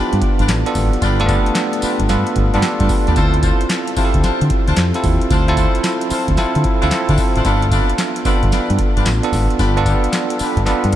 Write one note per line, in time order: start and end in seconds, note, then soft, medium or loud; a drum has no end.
0.00 0.66 B3 medium
0.00 0.14 D4 medium
0.00 0.66 D4 medium
0.00 0.14 F4 medium
0.00 0.66 F4 medium
0.00 0.14 G4 medium
0.00 0.45 G4 loud
0.00 0.67 A4 medium
0.00 0.14 B4 medium
0.13 0.20 G2 loud
0.13 closed hi-hat soft
0.22 kick loud
0.22 closed hi-hat medium
0.39 0.47 G1 medium
0.39 0.51 D4 medium
0.39 0.51 F4 medium
0.39 0.51 G4 medium
0.39 0.51 B4 medium
0.39 closed hi-hat soft
0.49 0.62 A1 medium
0.49 snare loud
0.49 clap medium
0.49 closed hi-hat medium
0.49 tambourine loud
0.66 1.05 B3 medium
0.66 1.05 D4 medium
0.66 1.05 F4 medium
0.66 1.05 A4 loud
0.66 closed hi-hat medium
0.75 0.89 G#1 loud
0.75 kick loud
0.75 open hi-hat medium
0.75 tambourine medium
0.93 closed hi-hat soft
1.01 1.36 G1 loud
1.01 1.21 D4 loud
1.01 1.21 F4 medium
1.01 1.21 G4 medium
1.01 1.21 B4 loud
1.01 kick loud
1.01 closed hi-hat medium
1.01 tambourine medium
1.19 1.24 A3 medium
1.19 1.92 D4 loud
1.19 1.92 F4 loud
1.19 1.93 A4 loud
1.19 closed hi-hat medium
1.26 1.95 B3 loud
1.26 1.47 D4 medium
1.26 1.48 F4 medium
1.26 1.48 G4 medium
1.26 1.48 B4 medium
1.26 kick loud
1.26 closed hi-hat medium
1.26 tambourine medium
1.46 closed hi-hat medium
1.55 snare loud
1.55 clap medium
1.55 closed hi-hat medium
1.55 tambourine loud
1.73 closed hi-hat medium
1.82 2.01 D4 medium
1.82 2.01 F4 medium
1.82 2.02 G4 medium
1.82 2.02 B4 medium
1.82 muted fingered electric bass stroke medium
1.82 open hi-hat medium
1.82 tambourine medium
2.00 2.07 G1 loud
2.00 kick loud
2.00 closed hi-hat medium
2.08 2.23 G2 loud
2.08 2.43 B3 medium
2.08 2.28 D4 medium
2.08 2.43 D4 medium
2.08 2.28 F4 medium
2.08 2.43 F4 medium
2.08 2.28 G4 medium
2.08 2.43 A4 loud
2.08 2.28 B4 medium
2.08 snare medium
2.08 closed hi-hat medium
2.08 tambourine medium
2.27 closed hi-hat soft
2.36 2.50 G1 medium
2.36 kick loud
2.36 closed hi-hat medium
2.53 2.61 G2 medium
2.53 2.61 B3 medium
2.53 2.65 D4 medium
2.53 2.61 D4 medium
2.53 2.65 F4 medium
2.53 2.61 F4 medium
2.53 2.65 G4 medium
2.53 2.62 A4 loud
2.53 2.65 B4 medium
2.53 closed hi-hat soft
2.62 2.80 B3 medium
2.62 2.80 G4 medium
2.62 snare loud
2.62 clap medium
2.62 closed hi-hat medium
2.62 tambourine loud
2.80 2.87 G2 loud
2.80 2.92 D4 medium
2.80 2.92 F4 medium
2.80 2.92 G4 medium
2.80 2.89 A4 medium
2.80 2.92 B4 medium
2.80 kick medium
2.80 closed hi-hat medium
2.89 3.07 D4 medium
2.89 3.07 B4 medium
2.89 kick loud
2.89 open hi-hat medium
2.89 tambourine medium
3.07 3.15 D#2 medium
3.07 3.14 D4 medium
3.07 3.15 F4 medium
3.07 3.16 F4 medium
3.07 3.19 G4 medium
3.07 3.19 B4 medium
3.07 3.33 D5 medium
3.07 closed hi-hat soft
3.16 3.51 D2 loud
3.16 3.84 C4 medium
3.16 3.35 D4 medium
3.16 3.84 E4 medium
3.16 3.35 F4 medium
3.16 3.84 F4 medium
3.16 3.35 A4 medium
3.16 3.84 A4 medium
3.16 3.35 C5 loud
3.16 kick loud
3.16 closed hi-hat medium
3.16 tambourine medium
3.34 closed hi-hat medium
3.42 3.62 D4 medium
3.42 3.62 F4 medium
3.42 3.62 A4 medium
3.42 3.62 C5 medium
3.42 kick loud
3.42 closed hi-hat medium
3.42 tambourine medium
3.61 closed hi-hat medium
3.70 snare loud
3.70 clap loud
3.70 closed hi-hat medium
3.70 tambourine loud
3.88 closed hi-hat medium
3.96 4.73 C4 medium
3.96 4.15 D4 medium
3.96 4.73 E4 medium
3.96 4.16 F4 medium
3.96 4.73 F4 medium
3.96 4.06 G4 medium
3.96 4.15 A4 medium
3.96 4.16 C5 medium
3.96 muted fingered electric bass stroke soft
3.96 kick loud
3.96 open hi-hat medium
3.96 tambourine medium
4.05 4.77 A4 loud
4.14 4.21 D2 medium
4.14 kick loud
4.14 closed hi-hat medium
4.23 4.42 D4 medium
4.23 4.42 F4 medium
4.23 4.42 A4 medium
4.23 4.43 C5 medium
4.23 muted fingered electric bass stroke soft
4.23 snare medium
4.23 closed hi-hat medium
4.23 tambourine medium
4.41 4.48 D3 loud
4.41 closed hi-hat soft
4.50 kick loud
4.50 closed hi-hat medium
4.68 4.75 D2 medium
4.68 4.79 D4 medium
4.68 4.79 F4 medium
4.68 4.80 A4 medium
4.68 4.80 C5 medium
4.68 closed hi-hat medium
4.77 4.91 F2 loud
4.77 snare loud
4.77 clap medium
4.77 closed hi-hat medium
4.77 tambourine loud
4.94 5.34 C4 medium
4.94 5.34 E4 medium
4.94 5.34 F4 medium
4.94 5.34 A4 loud
4.94 closed hi-hat medium
5.04 5.18 D#2 loud
5.04 kick loud
5.04 open hi-hat medium
5.04 tambourine medium
5.21 closed hi-hat soft
5.30 5.65 D2 loud
5.30 5.49 D4 loud
5.30 5.49 F4 medium
5.30 5.49 A4 medium
5.30 5.50 C5 loud
5.30 kick loud
5.30 closed hi-hat medium
5.30 tambourine medium
5.48 6.21 C4 loud
5.48 6.21 E4 loud
5.48 6.21 F4 loud
5.48 6.21 A4 loud
5.48 closed hi-hat medium
5.57 5.76 D4 medium
5.57 5.76 F4 medium
5.57 5.76 A4 medium
5.57 5.76 C5 medium
5.57 kick loud
5.57 closed hi-hat medium
5.57 tambourine medium
5.75 closed hi-hat medium
5.84 snare loud
5.84 clap medium
5.84 closed hi-hat medium
5.84 tambourine loud
6.01 closed hi-hat medium
6.10 6.30 D4 medium
6.10 6.30 F4 medium
6.10 6.30 A4 medium
6.10 6.30 C5 medium
6.10 muted fingered electric bass stroke medium
6.10 open hi-hat medium
6.10 tambourine medium
6.28 6.36 D2 loud
6.28 kick medium
6.28 closed hi-hat medium
6.37 6.71 C4 loud
6.37 6.57 D4 medium
6.37 6.71 E4 medium
6.37 6.57 F4 medium
6.37 6.71 F4 medium
6.37 6.57 A4 medium
6.37 6.72 A4 loud
6.37 6.57 C5 medium
6.37 muted fingered electric bass stroke medium
6.37 snare medium
6.37 closed hi-hat medium
6.37 tambourine medium
6.55 6.63 D3 loud
6.55 closed hi-hat soft
6.64 kick loud
6.64 closed hi-hat medium
6.82 6.90 D2 medium
6.82 6.89 C4 loud
6.82 6.94 D4 medium
6.82 6.89 E4 medium
6.82 6.94 F4 medium
6.82 6.90 F4 loud
6.82 6.94 A4 medium
6.82 6.90 A4 loud
6.82 6.94 C5 medium
6.82 closed hi-hat soft
6.91 7.37 C4 medium
6.91 7.38 E4 medium
6.91 7.38 F4 medium
6.91 7.38 A4 medium
6.91 snare loud
6.91 clap medium
6.91 closed hi-hat medium
6.91 tambourine loud
7.09 7.16 D3 loud
7.09 7.21 D4 medium
7.09 7.21 F4 medium
7.09 7.21 A4 medium
7.09 7.21 C5 medium
7.09 kick loud
7.09 closed hi-hat medium
7.18 kick loud
7.18 open hi-hat medium
7.18 tambourine medium
7.36 7.43 G#1 medium
7.36 7.43 D4 medium
7.36 7.44 F4 medium
7.36 7.48 A4 medium
7.36 7.48 C5 medium
7.36 closed hi-hat soft
7.45 7.79 G1 loud
7.45 8.12 B3 medium
7.45 7.64 D4 loud
7.45 8.12 D4 medium
7.45 7.64 F4 medium
7.45 8.12 F4 medium
7.45 7.64 G4 medium
7.45 8.12 A4 loud
7.45 7.64 B4 loud
7.45 kick loud
7.45 closed hi-hat medium
7.45 tambourine medium
7.62 closed hi-hat medium
7.71 7.91 D4 medium
7.71 7.91 F4 medium
7.71 7.91 G4 medium
7.71 7.91 B4 medium
7.71 kick loud
7.71 closed hi-hat medium
7.71 tambourine medium
7.90 closed hi-hat medium
7.98 snare loud
7.98 clap medium
7.98 closed hi-hat medium
7.98 tambourine loud
8.16 closed hi-hat medium
8.25 9.01 B3 medium
8.25 8.44 D4 medium
8.25 9.02 D4 medium
8.25 8.44 F4 medium
8.25 9.02 F4 medium
8.25 8.44 G4 medium
8.25 9.02 A4 loud
8.25 8.44 B4 medium
8.25 muted fingered electric bass stroke medium
8.25 kick loud
8.25 open hi-hat medium
8.25 tambourine medium
8.43 8.50 G1 medium
8.43 kick loud
8.43 closed hi-hat soft
8.52 8.71 D4 medium
8.52 8.71 F4 medium
8.52 8.71 G4 medium
8.52 8.71 B4 medium
8.52 muted fingered electric bass stroke soft
8.52 snare medium
8.52 closed hi-hat medium
8.52 tambourine medium
8.70 8.77 G2 loud
8.70 closed hi-hat soft
8.79 kick loud
8.79 closed hi-hat medium
8.96 9.04 G1 medium
8.96 9.08 D4 medium
8.96 9.08 F4 medium
8.96 9.08 G4 medium
8.96 9.08 B4 medium
8.96 closed hi-hat medium
9.06 9.20 A1 medium
9.06 snare loud
9.06 clap medium
9.06 closed hi-hat medium
9.06 tambourine loud
9.23 9.62 B3 loud
9.23 9.62 D4 medium
9.23 9.63 F4 medium
9.23 9.63 A4 loud
9.23 closed hi-hat medium
9.33 9.46 G#1 loud
9.33 kick medium
9.33 open hi-hat medium
9.33 tambourine medium
9.50 closed hi-hat soft
9.59 9.94 G1 loud
9.59 9.78 D4 medium
9.59 9.78 F4 medium
9.59 9.78 G4 medium
9.59 9.78 B4 loud
9.59 kick loud
9.59 closed hi-hat medium
9.59 tambourine medium
9.76 10.49 B3 loud
9.76 10.49 D4 loud
9.76 10.49 F4 loud
9.76 10.50 A4 loud
9.76 closed hi-hat medium
9.86 10.05 D4 medium
9.86 10.05 F4 medium
9.86 10.05 G4 medium
9.86 10.05 B4 medium
9.86 kick loud
9.86 closed hi-hat medium
9.86 tambourine medium
10.04 closed hi-hat medium
10.13 snare loud
10.13 clap medium
10.13 closed hi-hat medium
10.13 tambourine loud
10.30 closed hi-hat medium
10.39 10.58 D4 medium
10.39 10.58 F4 medium
10.39 10.59 G4 medium
10.39 10.59 B4 medium
10.39 muted fingered electric bass stroke medium
10.39 open hi-hat medium
10.39 tambourine medium
10.57 10.64 G1 loud
10.57 kick loud
10.57 closed hi-hat medium
10.66 10.96 B3 loud
10.66 10.96 D4 medium
10.66 10.85 D4 medium
10.66 10.96 F4 medium
10.66 10.85 F4 medium
10.66 10.85 G4 medium
10.66 10.96 A4 loud
10.66 10.85 B4 medium
10.66 snare medium
10.66 closed hi-hat medium
10.66 tambourine medium
10.84 10.91 G2 loud
10.84 closed hi-hat soft
10.93 closed hi-hat medium